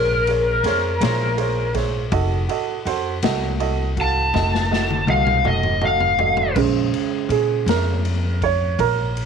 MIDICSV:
0, 0, Header, 1, 5, 480
1, 0, Start_track
1, 0, Key_signature, -5, "minor"
1, 0, Tempo, 741656
1, 1373, Time_signature, 12, 3, 24, 8
1, 5990, End_track
2, 0, Start_track
2, 0, Title_t, "Electric slide guitar"
2, 0, Program_c, 0, 29
2, 0, Note_on_c, 0, 70, 97
2, 1117, Note_off_c, 0, 70, 0
2, 2597, Note_on_c, 0, 81, 100
2, 3282, Note_off_c, 0, 81, 0
2, 3302, Note_on_c, 0, 77, 82
2, 3530, Note_off_c, 0, 77, 0
2, 3544, Note_on_c, 0, 75, 88
2, 3770, Note_off_c, 0, 75, 0
2, 3788, Note_on_c, 0, 77, 99
2, 4246, Note_off_c, 0, 77, 0
2, 5990, End_track
3, 0, Start_track
3, 0, Title_t, "Upright piano"
3, 0, Program_c, 1, 0
3, 0, Note_on_c, 1, 68, 52
3, 0, Note_on_c, 1, 72, 54
3, 0, Note_on_c, 1, 73, 66
3, 116, Note_off_c, 1, 68, 0
3, 119, Note_off_c, 1, 72, 0
3, 121, Note_off_c, 1, 73, 0
3, 182, Note_on_c, 1, 68, 59
3, 184, Note_on_c, 1, 72, 43
3, 188, Note_on_c, 1, 73, 59
3, 359, Note_off_c, 1, 68, 0
3, 360, Note_off_c, 1, 72, 0
3, 362, Note_off_c, 1, 73, 0
3, 422, Note_on_c, 1, 68, 71
3, 424, Note_on_c, 1, 72, 66
3, 427, Note_on_c, 1, 73, 82
3, 598, Note_off_c, 1, 68, 0
3, 600, Note_off_c, 1, 72, 0
3, 601, Note_off_c, 1, 73, 0
3, 654, Note_on_c, 1, 72, 64
3, 655, Note_on_c, 1, 68, 61
3, 659, Note_on_c, 1, 73, 78
3, 834, Note_off_c, 1, 72, 0
3, 835, Note_off_c, 1, 68, 0
3, 836, Note_off_c, 1, 73, 0
3, 888, Note_on_c, 1, 68, 64
3, 892, Note_on_c, 1, 72, 65
3, 894, Note_on_c, 1, 73, 70
3, 1071, Note_off_c, 1, 68, 0
3, 1073, Note_off_c, 1, 72, 0
3, 1074, Note_off_c, 1, 73, 0
3, 1128, Note_on_c, 1, 68, 67
3, 1129, Note_on_c, 1, 72, 57
3, 1135, Note_on_c, 1, 73, 68
3, 1311, Note_off_c, 1, 68, 0
3, 1311, Note_off_c, 1, 72, 0
3, 1314, Note_off_c, 1, 73, 0
3, 1370, Note_on_c, 1, 66, 74
3, 1373, Note_on_c, 1, 69, 71
3, 1376, Note_on_c, 1, 75, 75
3, 1551, Note_off_c, 1, 66, 0
3, 1553, Note_off_c, 1, 69, 0
3, 1554, Note_off_c, 1, 75, 0
3, 1608, Note_on_c, 1, 66, 64
3, 1614, Note_on_c, 1, 69, 66
3, 1620, Note_on_c, 1, 75, 71
3, 1790, Note_off_c, 1, 66, 0
3, 1793, Note_off_c, 1, 69, 0
3, 1796, Note_off_c, 1, 75, 0
3, 1850, Note_on_c, 1, 66, 65
3, 1855, Note_on_c, 1, 69, 61
3, 1856, Note_on_c, 1, 72, 75
3, 2031, Note_off_c, 1, 66, 0
3, 2033, Note_off_c, 1, 69, 0
3, 2034, Note_off_c, 1, 72, 0
3, 2091, Note_on_c, 1, 66, 76
3, 2092, Note_on_c, 1, 69, 61
3, 2096, Note_on_c, 1, 75, 76
3, 2271, Note_off_c, 1, 66, 0
3, 2272, Note_off_c, 1, 69, 0
3, 2274, Note_off_c, 1, 75, 0
3, 2325, Note_on_c, 1, 66, 65
3, 2329, Note_on_c, 1, 69, 60
3, 2333, Note_on_c, 1, 75, 78
3, 2508, Note_off_c, 1, 66, 0
3, 2510, Note_off_c, 1, 69, 0
3, 2512, Note_off_c, 1, 75, 0
3, 2573, Note_on_c, 1, 66, 60
3, 2576, Note_on_c, 1, 69, 51
3, 2579, Note_on_c, 1, 77, 69
3, 2752, Note_off_c, 1, 66, 0
3, 2754, Note_off_c, 1, 69, 0
3, 2755, Note_off_c, 1, 77, 0
3, 2805, Note_on_c, 1, 66, 57
3, 2807, Note_on_c, 1, 69, 52
3, 2813, Note_on_c, 1, 75, 69
3, 2988, Note_off_c, 1, 66, 0
3, 2989, Note_off_c, 1, 69, 0
3, 2992, Note_off_c, 1, 75, 0
3, 3045, Note_on_c, 1, 66, 55
3, 3048, Note_on_c, 1, 69, 48
3, 3050, Note_on_c, 1, 75, 61
3, 3228, Note_off_c, 1, 66, 0
3, 3229, Note_off_c, 1, 69, 0
3, 3230, Note_off_c, 1, 75, 0
3, 3283, Note_on_c, 1, 66, 62
3, 3283, Note_on_c, 1, 69, 52
3, 3290, Note_on_c, 1, 75, 69
3, 3467, Note_off_c, 1, 66, 0
3, 3467, Note_off_c, 1, 69, 0
3, 3471, Note_off_c, 1, 75, 0
3, 3521, Note_on_c, 1, 66, 60
3, 3525, Note_on_c, 1, 69, 51
3, 3529, Note_on_c, 1, 75, 58
3, 3706, Note_off_c, 1, 66, 0
3, 3708, Note_off_c, 1, 69, 0
3, 3710, Note_off_c, 1, 75, 0
3, 3762, Note_on_c, 1, 66, 57
3, 3767, Note_on_c, 1, 69, 53
3, 3770, Note_on_c, 1, 75, 65
3, 3946, Note_off_c, 1, 66, 0
3, 3949, Note_off_c, 1, 69, 0
3, 3951, Note_off_c, 1, 75, 0
3, 4003, Note_on_c, 1, 66, 54
3, 4009, Note_on_c, 1, 69, 47
3, 4014, Note_on_c, 1, 75, 58
3, 4187, Note_off_c, 1, 66, 0
3, 4190, Note_off_c, 1, 69, 0
3, 4193, Note_off_c, 1, 75, 0
3, 4249, Note_on_c, 1, 49, 44
3, 4250, Note_on_c, 1, 56, 39
3, 4256, Note_on_c, 1, 72, 46
3, 4734, Note_on_c, 1, 68, 69
3, 4966, Note_off_c, 1, 68, 0
3, 4977, Note_on_c, 1, 70, 64
3, 5441, Note_off_c, 1, 70, 0
3, 5459, Note_on_c, 1, 73, 73
3, 5690, Note_off_c, 1, 73, 0
3, 5694, Note_on_c, 1, 70, 76
3, 5990, Note_off_c, 1, 49, 0
3, 5990, Note_off_c, 1, 56, 0
3, 5990, Note_off_c, 1, 70, 0
3, 5990, Note_off_c, 1, 72, 0
3, 5990, End_track
4, 0, Start_track
4, 0, Title_t, "Upright bass"
4, 0, Program_c, 2, 32
4, 0, Note_on_c, 2, 34, 98
4, 387, Note_off_c, 2, 34, 0
4, 411, Note_on_c, 2, 41, 87
4, 633, Note_off_c, 2, 41, 0
4, 651, Note_on_c, 2, 34, 84
4, 1345, Note_off_c, 2, 34, 0
4, 1372, Note_on_c, 2, 29, 112
4, 1593, Note_off_c, 2, 29, 0
4, 1847, Note_on_c, 2, 41, 91
4, 2070, Note_off_c, 2, 41, 0
4, 2089, Note_on_c, 2, 36, 91
4, 2784, Note_off_c, 2, 36, 0
4, 2807, Note_on_c, 2, 29, 92
4, 3263, Note_off_c, 2, 29, 0
4, 3282, Note_on_c, 2, 36, 95
4, 3507, Note_off_c, 2, 36, 0
4, 3520, Note_on_c, 2, 29, 82
4, 4220, Note_off_c, 2, 29, 0
4, 4243, Note_on_c, 2, 34, 98
4, 4468, Note_off_c, 2, 34, 0
4, 4718, Note_on_c, 2, 46, 87
4, 4946, Note_off_c, 2, 46, 0
4, 4959, Note_on_c, 2, 41, 92
4, 5662, Note_off_c, 2, 41, 0
4, 5686, Note_on_c, 2, 34, 92
4, 5990, Note_off_c, 2, 34, 0
4, 5990, End_track
5, 0, Start_track
5, 0, Title_t, "Drums"
5, 175, Note_on_c, 9, 51, 62
5, 240, Note_off_c, 9, 51, 0
5, 414, Note_on_c, 9, 51, 67
5, 425, Note_on_c, 9, 38, 32
5, 479, Note_off_c, 9, 51, 0
5, 490, Note_off_c, 9, 38, 0
5, 655, Note_on_c, 9, 51, 86
5, 666, Note_on_c, 9, 38, 106
5, 720, Note_off_c, 9, 51, 0
5, 731, Note_off_c, 9, 38, 0
5, 893, Note_on_c, 9, 51, 65
5, 957, Note_off_c, 9, 51, 0
5, 1129, Note_on_c, 9, 51, 60
5, 1133, Note_on_c, 9, 36, 76
5, 1140, Note_on_c, 9, 38, 32
5, 1194, Note_off_c, 9, 51, 0
5, 1197, Note_off_c, 9, 36, 0
5, 1205, Note_off_c, 9, 38, 0
5, 1370, Note_on_c, 9, 51, 81
5, 1372, Note_on_c, 9, 36, 107
5, 1435, Note_off_c, 9, 51, 0
5, 1437, Note_off_c, 9, 36, 0
5, 1612, Note_on_c, 9, 51, 55
5, 1677, Note_off_c, 9, 51, 0
5, 1854, Note_on_c, 9, 51, 62
5, 1919, Note_off_c, 9, 51, 0
5, 2087, Note_on_c, 9, 51, 84
5, 2098, Note_on_c, 9, 38, 103
5, 2152, Note_off_c, 9, 51, 0
5, 2163, Note_off_c, 9, 38, 0
5, 2331, Note_on_c, 9, 51, 56
5, 2395, Note_off_c, 9, 51, 0
5, 2569, Note_on_c, 9, 51, 51
5, 2570, Note_on_c, 9, 36, 69
5, 2634, Note_off_c, 9, 36, 0
5, 2634, Note_off_c, 9, 51, 0
5, 2808, Note_on_c, 9, 36, 110
5, 2816, Note_on_c, 9, 38, 63
5, 2873, Note_off_c, 9, 36, 0
5, 2880, Note_off_c, 9, 38, 0
5, 2943, Note_on_c, 9, 38, 54
5, 3008, Note_off_c, 9, 38, 0
5, 3062, Note_on_c, 9, 38, 64
5, 3126, Note_off_c, 9, 38, 0
5, 3175, Note_on_c, 9, 48, 63
5, 3240, Note_off_c, 9, 48, 0
5, 3290, Note_on_c, 9, 48, 82
5, 3355, Note_off_c, 9, 48, 0
5, 3409, Note_on_c, 9, 47, 75
5, 3474, Note_off_c, 9, 47, 0
5, 3528, Note_on_c, 9, 47, 72
5, 3592, Note_off_c, 9, 47, 0
5, 3646, Note_on_c, 9, 45, 77
5, 3711, Note_off_c, 9, 45, 0
5, 3764, Note_on_c, 9, 45, 83
5, 3828, Note_off_c, 9, 45, 0
5, 3886, Note_on_c, 9, 43, 70
5, 3951, Note_off_c, 9, 43, 0
5, 4004, Note_on_c, 9, 43, 90
5, 4069, Note_off_c, 9, 43, 0
5, 4123, Note_on_c, 9, 43, 86
5, 4188, Note_off_c, 9, 43, 0
5, 4244, Note_on_c, 9, 49, 95
5, 4246, Note_on_c, 9, 36, 104
5, 4309, Note_off_c, 9, 49, 0
5, 4311, Note_off_c, 9, 36, 0
5, 4489, Note_on_c, 9, 51, 55
5, 4554, Note_off_c, 9, 51, 0
5, 4725, Note_on_c, 9, 51, 62
5, 4790, Note_off_c, 9, 51, 0
5, 4968, Note_on_c, 9, 51, 86
5, 4979, Note_on_c, 9, 38, 105
5, 5032, Note_off_c, 9, 51, 0
5, 5043, Note_off_c, 9, 38, 0
5, 5209, Note_on_c, 9, 51, 64
5, 5274, Note_off_c, 9, 51, 0
5, 5449, Note_on_c, 9, 36, 71
5, 5449, Note_on_c, 9, 51, 57
5, 5513, Note_off_c, 9, 36, 0
5, 5514, Note_off_c, 9, 51, 0
5, 5689, Note_on_c, 9, 36, 105
5, 5690, Note_on_c, 9, 51, 79
5, 5754, Note_off_c, 9, 36, 0
5, 5755, Note_off_c, 9, 51, 0
5, 5933, Note_on_c, 9, 51, 54
5, 5990, Note_off_c, 9, 51, 0
5, 5990, End_track
0, 0, End_of_file